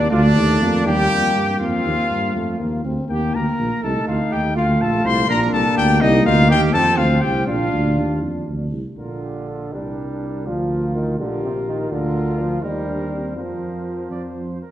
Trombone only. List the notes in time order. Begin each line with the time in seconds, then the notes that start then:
0.10 F4
0.36 A3
0.62 A#3
1.60 C4
3.83 D#4
4.55 F4
5.28 D4
6.01 D#4
6.73 C4
7.47 D4
8.96 D3
9.73 G3
10.47 F3
10.95 D#3
11.18 D3
11.44 C3
11.67 D#3
11.91 D3
12.38 F3
12.62 G3
13.36 F3